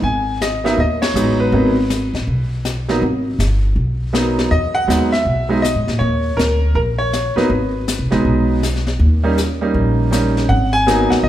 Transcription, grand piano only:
0.04 0.38 G#5 medium
0.42 0.63 D#5 medium
0.64 0.76 F#3 medium
0.64 0.77 A#3 medium
0.64 0.77 B3 medium
0.64 0.77 D#4 medium
0.64 0.78 E5 medium
0.80 1.01 D#5 medium
1.02 1.37 C#5 medium
1.15 1.52 F#3 medium
1.15 1.72 G#3 medium
1.15 1.52 B3 medium
1.15 1.52 D#4 medium
1.40 2.48 B4 medium
1.53 1.74 F#3 medium
1.53 1.74 A#3 soft
1.53 1.75 B3 soft
1.53 1.75 D#4 medium
2.88 3.01 F#3 medium
2.88 3.01 A#3 medium
2.88 3.01 B3 medium
2.88 3.01 D#4 medium
4.13 4.51 F#3 medium
4.13 4.51 A#3 soft
4.13 4.51 B3 medium
4.13 4.52 D#4 medium
4.51 4.76 D#5 medium
4.75 5.10 F#5 loud
4.87 5.10 F#3 medium
4.87 5.10 G#3 soft
4.87 5.10 B3 medium
4.87 5.10 D#4 medium
5.12 5.65 E5 medium
5.49 5.62 F#3 medium
5.49 5.62 G#3 soft
5.49 5.62 B3 medium
5.49 5.62 D#4 medium
5.62 5.98 D#5 medium
5.99 6.38 C#5 medium
6.37 6.74 A#4 medium
6.75 6.81 A#4 medium
6.98 7.34 C#5 medium
7.36 7.49 F#3 medium
7.36 7.49 A#3 medium
7.36 7.49 B3 medium
7.36 7.49 D#4 medium
7.36 8.82 B4 medium
8.11 8.59 F#3 medium
8.11 8.60 G#3 medium
8.11 8.60 B3 medium
8.11 8.60 D#4 medium
9.23 9.36 G3 medium
9.23 9.36 A#3 medium
9.23 9.36 C#4 medium
9.23 9.36 D#4 medium
9.61 10.09 G3 medium
9.61 10.09 A#3 medium
9.61 10.10 C#4 soft
9.61 10.10 D#4 medium
10.11 10.49 G3 medium
10.11 10.49 A#3 medium
10.11 10.49 C#4 medium
10.11 10.49 D#4 medium
10.49 10.74 F#5 medium
10.73 11.12 G#5 loud
10.87 11.29 F#3 medium
10.87 11.29 A#3 medium
10.87 11.29 B3 medium
10.87 11.29 D#4 medium
11.10 11.15 F#5 medium
11.23 11.29 D#5 medium

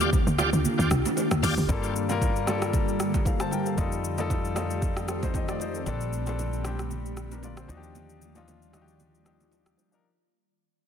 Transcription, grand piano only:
1.68 2.01 G3 medium
1.68 2.01 A#3 medium
1.68 2.01 F4 medium
1.68 2.02 A4 medium
2.09 2.40 G3 medium
2.09 2.40 A#3 medium
2.09 2.41 F4 medium
2.09 2.41 A#4 loud
2.46 2.90 G3 medium
2.46 2.90 A#3 medium
2.46 2.91 F4 medium
2.46 2.91 A4 loud
3.26 3.40 A4 medium
3.26 3.40 F5 medium
3.40 3.52 C5 medium
3.40 3.51 A5 medium
3.52 3.66 A#4 medium
3.52 3.66 G5 medium
3.67 3.78 A4 medium
3.67 3.91 F5 medium
3.77 4.09 G3 medium
3.77 4.10 D#4 medium
3.77 4.10 F4 medium
3.77 4.11 A4 medium
4.18 4.49 G3 medium
4.18 4.49 D#4 medium
4.18 4.50 F4 medium
4.18 4.50 A4 loud
4.55 4.98 G3 medium
4.55 4.99 D#4 medium
4.55 4.99 F4 medium
4.55 5.00 A4 medium
5.09 5.23 C4 medium
5.09 5.22 A4 medium
5.23 5.34 D#4 medium
5.23 5.34 C5 medium
5.35 5.49 G4 medium
5.35 5.48 D#5 medium
5.49 5.60 F4 medium
5.49 5.60 D5 medium
5.61 5.75 D#4 medium
5.61 5.74 C5 medium
5.76 5.85 C4 medium
5.76 5.87 A4 medium
5.86 6.18 G3 medium
5.86 6.18 C4 medium
5.86 6.19 D4 medium
5.86 6.19 A4 medium
6.26 6.57 G3 medium
6.26 6.58 C4 medium
6.26 6.58 D4 medium
6.26 6.59 A4 medium
6.64 7.07 G3 medium
6.64 7.08 C4 medium
6.64 7.08 D4 medium
6.64 7.08 G4 medium
7.32 7.43 D4 medium
7.32 7.43 A#4 medium
7.44 7.57 F4 medium
7.44 7.57 D5 medium
7.58 7.83 C5 medium
7.68 8.21 F3 medium
7.68 8.21 D4 medium
7.68 8.22 D#4 medium
7.68 7.77 F#4 medium
7.77 8.25 G4 loud
8.35 8.66 F3 medium
8.35 8.67 D4 medium
8.35 8.67 D#4 medium
8.35 8.67 F4 medium
8.73 9.16 F3 medium
8.73 9.16 D4 medium
8.73 9.17 D#4 medium
8.73 8.81 F#4 medium
8.81 9.20 G4 medium
9.25 9.78 F3 medium
9.25 9.78 D4 medium
9.25 9.78 D#4 medium
9.25 9.79 G4 medium
9.91 10.01 F3 medium
9.91 10.02 D4 medium
9.91 10.02 D#4 medium
9.91 10.02 A#4 medium

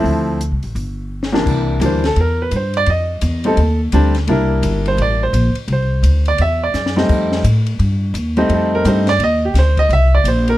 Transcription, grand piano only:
0.00 0.37 F3 medium
0.00 0.37 A3 medium
0.00 0.38 C4 medium
0.00 0.38 E4 medium
0.00 0.24 G4 medium
0.00 0.24 E5 medium
1.32 1.78 C2 medium
1.32 1.78 E3 soft
1.32 1.79 G3 medium
1.32 1.79 A#3 medium
1.32 1.79 D4 medium
1.81 2.01 E3 medium
1.81 2.01 G3 medium
1.81 2.01 A#3 medium
1.81 2.02 D4 medium
1.85 2.05 C5 medium
2.06 2.17 A4 medium
2.20 2.40 A#4 medium
2.42 2.53 B4 medium
2.56 2.76 C5 medium
2.77 2.88 D5 medium
2.90 3.42 D#5 medium
3.45 3.56 G3 medium
3.45 3.56 A3 soft
3.45 3.57 C4 medium
3.45 3.57 D#4 medium
3.45 3.79 A4 medium
3.93 4.13 G3 medium
3.93 4.13 A3 medium
3.93 4.13 C4 medium
3.93 4.13 D4 medium
4.28 5.26 G3 medium
4.28 5.26 A#3 medium
4.28 5.26 D4 medium
4.28 5.27 E4 medium
4.28 4.83 A#4 medium
4.88 4.99 C5 medium
5.02 5.22 D5 medium
5.23 5.55 C5 medium
5.73 6.24 C5 medium
6.28 6.40 D5 medium
6.42 6.62 E5 medium
6.63 6.95 D5 medium
6.96 7.42 G3 medium
6.96 7.42 A3 medium
6.96 7.42 C4 medium
6.96 7.42 D#4 medium
8.37 8.82 G3 medium
8.37 8.83 A3 medium
8.37 8.83 C4 medium
8.37 8.83 D#4 medium
8.54 8.73 A4 medium
8.75 8.86 A#4 medium
8.85 9.05 G3 medium
8.85 9.05 A3 medium
8.85 9.05 C4 medium
8.85 9.06 D#4 medium
8.85 9.08 C5 medium
9.09 9.21 D5 medium
9.24 9.43 D#5 loud
9.45 9.56 G4 medium
9.59 9.78 C5 medium
9.79 9.91 D#5 loud
9.93 10.13 E5 loud
10.15 10.26 D5 medium
10.28 10.48 C5 medium
10.49 10.58 A#4 medium

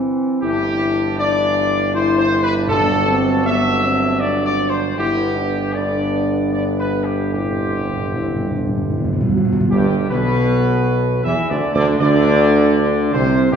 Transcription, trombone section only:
0.00 2.64 E3 medium
0.00 0.26 D4 medium
0.43 4.94 D4 loud
2.68 4.97 F#3 loud
4.98 5.72 D3 medium
4.98 5.72 B3 loud
5.76 6.50 D3 medium
5.76 6.50 B3 medium
6.53 7.29 D3 medium
6.53 7.29 B3 medium
7.34 9.34 D3 medium
7.34 9.38 C4 medium
9.72 10.07 G2 loud
10.09 11.20 B2 loud
11.24 11.48 E3 loud
11.50 11.73 D3 medium
11.75 11.99 D3 loud
12.00 13.10 D3 loud
13.14 13.52 C3 loud
13.51 13.56 G2 loud

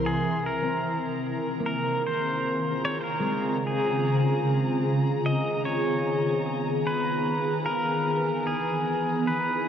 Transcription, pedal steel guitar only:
0.06 0.48 G#4 medium
0.46 1.65 A#4 medium
1.66 2.06 A#4 medium
2.07 2.85 C5 medium
2.85 3.00 C#5 loud
3.01 3.67 A#4 medium
3.01 3.04 C5 medium
3.67 4.83 G#4 medium
5.26 5.65 D#5 loud
5.65 6.42 C#5 medium
6.87 7.63 B4 medium
7.66 8.49 A#4 medium
8.47 9.29 G#4 medium
9.27 9.68 B4 medium

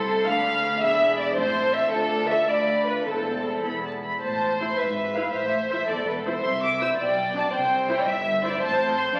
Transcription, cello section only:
0.00 0.27 C2 medium
0.28 0.83 D2 medium
0.83 1.38 E2 medium
1.37 1.93 A2 medium
1.92 2.48 D2 medium
2.49 3.06 D2 soft
3.07 3.64 E2 medium
3.65 4.03 E2 soft
4.23 4.69 A2 medium
4.79 5.24 G#2 medium
5.33 5.79 A2 medium
5.89 6.35 E2 medium
6.44 6.89 C3 medium
6.98 7.44 B2 medium
7.53 7.98 C3 medium
8.07 8.52 G2 medium
8.61 9.11 A2 medium
9.15 9.20 F2 medium

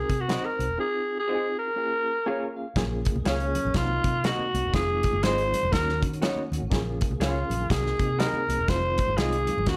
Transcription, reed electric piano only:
0.00 0.20 C4 medium
0.00 0.20 D#4 medium
0.00 0.20 F#4 medium
0.00 0.23 A#4 medium
0.28 0.69 C4 medium
0.28 0.36 D4 medium
0.28 0.69 F#4 medium
0.28 0.69 C5 medium
0.35 0.72 D#4 medium
0.78 1.18 C4 medium
0.78 1.19 D#4 medium
0.78 1.19 F4 medium
0.78 1.19 G#4 medium
1.27 1.68 C4 medium
1.27 1.68 D#4 medium
1.27 1.68 F4 medium
1.27 1.36 F#4 medium
1.35 1.71 G#4 medium
1.76 2.17 A#3 medium
1.76 2.17 C#4 medium
1.76 2.17 F4 medium
1.76 2.17 G#4 medium
2.26 2.66 A#3 medium
2.26 2.67 C#4 medium
2.26 2.67 F4 medium
2.26 2.67 G#4 medium
2.26 2.55 G#5 medium
2.57 2.75 F5 medium
2.76 3.16 A#3 medium
2.76 3.16 C#4 medium
2.76 3.17 F4 medium
2.76 3.17 G#4 medium
3.25 3.65 A#3 medium
3.25 3.65 C#4 medium
3.25 3.65 F4 medium
3.25 3.66 G#4 medium
3.74 4.16 F#3 medium
3.74 4.14 A#3 medium
3.74 4.15 C4 medium
3.74 4.15 D#4 medium
4.24 4.64 A#3 medium
4.24 4.64 C4 medium
4.24 4.65 D#4 medium
4.24 4.65 F#4 medium
4.73 5.13 G#3 medium
4.73 5.13 C4 medium
4.73 5.14 D#4 medium
4.73 5.14 F4 medium
5.23 5.63 G#3 medium
5.23 5.63 C4 medium
5.23 5.63 D#4 medium
5.23 5.63 F4 medium
5.71 6.12 A#3 medium
5.71 6.12 C#4 medium
5.71 6.12 D#4 medium
5.71 6.12 F#4 medium
6.21 6.61 A#3 medium
6.21 6.62 C#4 medium
6.21 6.62 D#4 medium
6.21 6.30 F4 medium
6.29 6.65 F#4 loud
6.70 7.10 A#3 medium
6.70 7.11 C#4 medium
6.70 7.11 F4 medium
6.70 7.11 G#4 medium
7.20 7.60 A#3 medium
7.20 7.60 C#4 medium
7.20 7.60 F4 medium
7.20 7.61 G#4 medium
7.70 8.10 A#3 medium
7.70 8.10 C4 medium
7.70 8.10 D#4 medium
7.70 8.10 F#4 medium
8.19 8.59 A#3 medium
8.19 8.59 C4 medium
8.19 8.59 D#4 medium
8.19 8.27 G4 medium
8.27 8.63 G#4 medium
8.68 9.08 G#3 medium
8.68 9.08 C4 medium
8.68 9.09 D#4 medium
8.68 9.09 F4 medium
9.18 9.25 G3 medium
9.18 9.58 C4 medium
9.18 9.58 D#4 medium
9.18 9.58 F4 medium
9.24 9.61 G#3 medium
9.67 9.77 A#3 medium
9.67 9.77 C#4 medium
9.67 9.77 D#4 medium
9.67 9.75 F4 medium

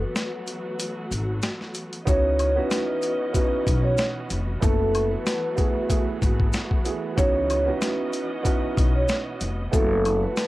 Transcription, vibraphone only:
0.02 0.93 B4 medium
2.09 2.54 C#5 loud
2.57 3.31 B4 medium
3.35 3.81 B4 medium
3.84 3.97 C#5 medium
4.63 5.09 A4 loud
5.11 6.03 B4 medium
7.17 7.64 C#5 loud
7.67 8.41 B4 medium
8.46 8.92 B4 medium
8.95 9.08 C#5 medium
9.73 10.20 A4 loud
10.23 10.47 B4 medium

